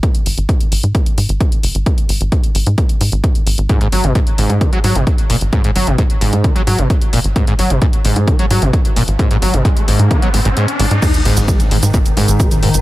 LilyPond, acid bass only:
\new Staff \with { instrumentName = "Acid bass" } { \clef bass \time 4/4 \key gis \minor \tempo 4 = 131 r1 | r1 | gis,16 gis,16 fis16 b,16 gis,16 r16 gis,8 dis16 fis16 fis16 b,16 r8 ais,16 r16 | gis,16 gis,16 fis16 b,16 gis,16 r16 gis,8 dis16 fis16 fis16 b,16 r8 ais,16 r16 |
gis,16 gis,16 fis16 b,16 gis,16 r16 gis,8 dis16 fis16 fis16 b,16 r8 ais,16 r16 | gis,16 gis,16 fis16 b,16 gis,16 r16 gis,8 dis16 fis16 gis,16 gis,16 gis,16 r16 gis,16 r16 | gis,16 r16 gis,8 gis16 gis,,16 gis,16 r16 ais,16 r16 gis,8 gis16 gis,,16 gis,16 r16 | }